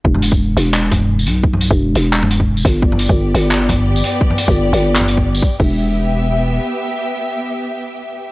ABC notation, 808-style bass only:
X:1
M:4/4
L:1/16
Q:"Swing 16ths" 1/4=173
K:Em
V:1 name="808-style bass" clef=bass
E,,,6 E,,,8 B,,,2- | B,,,3 E,,,3 E,,,8 G,,,2- | G,,,3 G,,,3 G,,,8 z2 | z3 G,,,3 G,,,8 z2 |
E,,,12 z4 | z16 |]